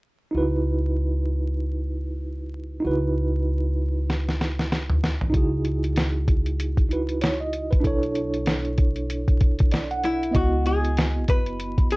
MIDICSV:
0, 0, Header, 1, 5, 480
1, 0, Start_track
1, 0, Key_signature, 4, "minor"
1, 0, Tempo, 625000
1, 263, Time_signature, 4, 2, 24, 8
1, 9189, End_track
2, 0, Start_track
2, 0, Title_t, "Hollow-body jazz guitar"
2, 0, Program_c, 0, 26
2, 7718, Note_on_c, 0, 64, 86
2, 7954, Note_on_c, 0, 66, 83
2, 7957, Note_off_c, 0, 64, 0
2, 8187, Note_off_c, 0, 66, 0
2, 8190, Note_on_c, 0, 68, 83
2, 8636, Note_off_c, 0, 68, 0
2, 8675, Note_on_c, 0, 71, 95
2, 9118, Note_off_c, 0, 71, 0
2, 9155, Note_on_c, 0, 68, 85
2, 9189, Note_off_c, 0, 68, 0
2, 9189, End_track
3, 0, Start_track
3, 0, Title_t, "Tine electric piano"
3, 0, Program_c, 1, 4
3, 238, Note_on_c, 1, 63, 62
3, 252, Note_on_c, 1, 64, 62
3, 269, Note_on_c, 1, 66, 54
3, 288, Note_on_c, 1, 71, 65
3, 2139, Note_off_c, 1, 63, 0
3, 2147, Note_off_c, 1, 64, 0
3, 2152, Note_on_c, 1, 63, 61
3, 2155, Note_off_c, 1, 66, 0
3, 2164, Note_off_c, 1, 71, 0
3, 2169, Note_on_c, 1, 64, 57
3, 2186, Note_on_c, 1, 66, 58
3, 2204, Note_on_c, 1, 71, 68
3, 4056, Note_off_c, 1, 63, 0
3, 4065, Note_off_c, 1, 64, 0
3, 4069, Note_on_c, 1, 63, 61
3, 4073, Note_off_c, 1, 66, 0
3, 4083, Note_off_c, 1, 71, 0
3, 4089, Note_on_c, 1, 64, 63
3, 4105, Note_on_c, 1, 66, 61
3, 4125, Note_on_c, 1, 68, 69
3, 5261, Note_off_c, 1, 63, 0
3, 5272, Note_off_c, 1, 64, 0
3, 5280, Note_off_c, 1, 66, 0
3, 5290, Note_off_c, 1, 68, 0
3, 5292, Note_on_c, 1, 63, 47
3, 5302, Note_on_c, 1, 64, 48
3, 5310, Note_on_c, 1, 66, 42
3, 5321, Note_on_c, 1, 71, 58
3, 5542, Note_on_c, 1, 73, 57
3, 5552, Note_off_c, 1, 71, 0
3, 5677, Note_off_c, 1, 73, 0
3, 5686, Note_on_c, 1, 75, 60
3, 5913, Note_off_c, 1, 75, 0
3, 5918, Note_on_c, 1, 71, 54
3, 5992, Note_on_c, 1, 62, 66
3, 6001, Note_off_c, 1, 64, 0
3, 6011, Note_on_c, 1, 64, 59
3, 6017, Note_off_c, 1, 63, 0
3, 6026, Note_off_c, 1, 66, 0
3, 6027, Note_on_c, 1, 69, 58
3, 6043, Note_on_c, 1, 73, 78
3, 6149, Note_off_c, 1, 71, 0
3, 7467, Note_on_c, 1, 74, 61
3, 7597, Note_off_c, 1, 74, 0
3, 7611, Note_on_c, 1, 78, 63
3, 7897, Note_off_c, 1, 62, 0
3, 7906, Note_off_c, 1, 64, 0
3, 7914, Note_off_c, 1, 69, 0
3, 7920, Note_on_c, 1, 59, 61
3, 7922, Note_off_c, 1, 73, 0
3, 7922, Note_off_c, 1, 78, 0
3, 7936, Note_on_c, 1, 75, 55
3, 7953, Note_on_c, 1, 64, 50
3, 7969, Note_on_c, 1, 66, 65
3, 9189, Note_off_c, 1, 59, 0
3, 9189, Note_off_c, 1, 64, 0
3, 9189, Note_off_c, 1, 66, 0
3, 9189, Note_off_c, 1, 75, 0
3, 9189, End_track
4, 0, Start_track
4, 0, Title_t, "Upright bass"
4, 0, Program_c, 2, 32
4, 264, Note_on_c, 2, 37, 72
4, 2152, Note_off_c, 2, 37, 0
4, 2187, Note_on_c, 2, 37, 73
4, 4074, Note_off_c, 2, 37, 0
4, 4103, Note_on_c, 2, 37, 76
4, 5992, Note_off_c, 2, 37, 0
4, 6026, Note_on_c, 2, 35, 70
4, 7914, Note_off_c, 2, 35, 0
4, 7948, Note_on_c, 2, 37, 93
4, 8669, Note_off_c, 2, 37, 0
4, 8669, Note_on_c, 2, 30, 79
4, 9189, Note_off_c, 2, 30, 0
4, 9189, End_track
5, 0, Start_track
5, 0, Title_t, "Drums"
5, 3147, Note_on_c, 9, 38, 52
5, 3224, Note_off_c, 9, 38, 0
5, 3292, Note_on_c, 9, 38, 46
5, 3369, Note_off_c, 9, 38, 0
5, 3388, Note_on_c, 9, 38, 63
5, 3465, Note_off_c, 9, 38, 0
5, 3528, Note_on_c, 9, 38, 59
5, 3605, Note_off_c, 9, 38, 0
5, 3627, Note_on_c, 9, 38, 76
5, 3703, Note_off_c, 9, 38, 0
5, 3760, Note_on_c, 9, 45, 69
5, 3837, Note_off_c, 9, 45, 0
5, 3869, Note_on_c, 9, 38, 83
5, 3946, Note_off_c, 9, 38, 0
5, 4003, Note_on_c, 9, 43, 81
5, 4080, Note_off_c, 9, 43, 0
5, 4100, Note_on_c, 9, 36, 87
5, 4100, Note_on_c, 9, 42, 80
5, 4176, Note_off_c, 9, 36, 0
5, 4177, Note_off_c, 9, 42, 0
5, 4337, Note_on_c, 9, 42, 61
5, 4413, Note_off_c, 9, 42, 0
5, 4484, Note_on_c, 9, 42, 45
5, 4561, Note_off_c, 9, 42, 0
5, 4578, Note_on_c, 9, 42, 72
5, 4588, Note_on_c, 9, 38, 104
5, 4655, Note_off_c, 9, 42, 0
5, 4665, Note_off_c, 9, 38, 0
5, 4822, Note_on_c, 9, 36, 89
5, 4823, Note_on_c, 9, 42, 69
5, 4899, Note_off_c, 9, 36, 0
5, 4899, Note_off_c, 9, 42, 0
5, 4962, Note_on_c, 9, 42, 47
5, 5038, Note_off_c, 9, 42, 0
5, 5067, Note_on_c, 9, 42, 91
5, 5144, Note_off_c, 9, 42, 0
5, 5202, Note_on_c, 9, 36, 72
5, 5207, Note_on_c, 9, 42, 30
5, 5279, Note_off_c, 9, 36, 0
5, 5284, Note_off_c, 9, 42, 0
5, 5308, Note_on_c, 9, 42, 61
5, 5385, Note_off_c, 9, 42, 0
5, 5443, Note_on_c, 9, 42, 47
5, 5520, Note_off_c, 9, 42, 0
5, 5539, Note_on_c, 9, 42, 87
5, 5557, Note_on_c, 9, 38, 96
5, 5616, Note_off_c, 9, 42, 0
5, 5634, Note_off_c, 9, 38, 0
5, 5783, Note_on_c, 9, 42, 59
5, 5859, Note_off_c, 9, 42, 0
5, 5932, Note_on_c, 9, 36, 69
5, 5933, Note_on_c, 9, 42, 44
5, 6009, Note_off_c, 9, 36, 0
5, 6010, Note_off_c, 9, 42, 0
5, 6023, Note_on_c, 9, 36, 99
5, 6026, Note_on_c, 9, 42, 83
5, 6100, Note_off_c, 9, 36, 0
5, 6103, Note_off_c, 9, 42, 0
5, 6167, Note_on_c, 9, 42, 33
5, 6244, Note_off_c, 9, 42, 0
5, 6261, Note_on_c, 9, 42, 63
5, 6338, Note_off_c, 9, 42, 0
5, 6403, Note_on_c, 9, 42, 44
5, 6480, Note_off_c, 9, 42, 0
5, 6498, Note_on_c, 9, 42, 70
5, 6508, Note_on_c, 9, 38, 109
5, 6574, Note_off_c, 9, 42, 0
5, 6585, Note_off_c, 9, 38, 0
5, 6642, Note_on_c, 9, 42, 32
5, 6719, Note_off_c, 9, 42, 0
5, 6741, Note_on_c, 9, 42, 72
5, 6744, Note_on_c, 9, 36, 91
5, 6818, Note_off_c, 9, 42, 0
5, 6821, Note_off_c, 9, 36, 0
5, 6879, Note_on_c, 9, 42, 45
5, 6956, Note_off_c, 9, 42, 0
5, 6987, Note_on_c, 9, 42, 96
5, 7064, Note_off_c, 9, 42, 0
5, 7125, Note_on_c, 9, 36, 71
5, 7127, Note_on_c, 9, 42, 29
5, 7202, Note_off_c, 9, 36, 0
5, 7204, Note_off_c, 9, 42, 0
5, 7223, Note_on_c, 9, 42, 60
5, 7226, Note_on_c, 9, 36, 81
5, 7300, Note_off_c, 9, 42, 0
5, 7303, Note_off_c, 9, 36, 0
5, 7363, Note_on_c, 9, 42, 48
5, 7374, Note_on_c, 9, 36, 91
5, 7440, Note_off_c, 9, 42, 0
5, 7451, Note_off_c, 9, 36, 0
5, 7461, Note_on_c, 9, 42, 84
5, 7478, Note_on_c, 9, 38, 91
5, 7537, Note_off_c, 9, 42, 0
5, 7555, Note_off_c, 9, 38, 0
5, 7610, Note_on_c, 9, 42, 30
5, 7687, Note_off_c, 9, 42, 0
5, 7708, Note_on_c, 9, 42, 59
5, 7785, Note_off_c, 9, 42, 0
5, 7857, Note_on_c, 9, 42, 46
5, 7934, Note_off_c, 9, 42, 0
5, 7946, Note_on_c, 9, 42, 87
5, 7947, Note_on_c, 9, 36, 104
5, 8023, Note_off_c, 9, 36, 0
5, 8023, Note_off_c, 9, 42, 0
5, 8185, Note_on_c, 9, 42, 65
5, 8262, Note_off_c, 9, 42, 0
5, 8329, Note_on_c, 9, 42, 49
5, 8406, Note_off_c, 9, 42, 0
5, 8425, Note_on_c, 9, 42, 76
5, 8436, Note_on_c, 9, 38, 107
5, 8502, Note_off_c, 9, 42, 0
5, 8513, Note_off_c, 9, 38, 0
5, 8663, Note_on_c, 9, 42, 75
5, 8667, Note_on_c, 9, 36, 100
5, 8740, Note_off_c, 9, 42, 0
5, 8744, Note_off_c, 9, 36, 0
5, 8804, Note_on_c, 9, 42, 50
5, 8880, Note_off_c, 9, 42, 0
5, 8907, Note_on_c, 9, 42, 94
5, 8983, Note_off_c, 9, 42, 0
5, 9046, Note_on_c, 9, 36, 76
5, 9048, Note_on_c, 9, 42, 32
5, 9123, Note_off_c, 9, 36, 0
5, 9124, Note_off_c, 9, 42, 0
5, 9144, Note_on_c, 9, 42, 66
5, 9189, Note_off_c, 9, 42, 0
5, 9189, End_track
0, 0, End_of_file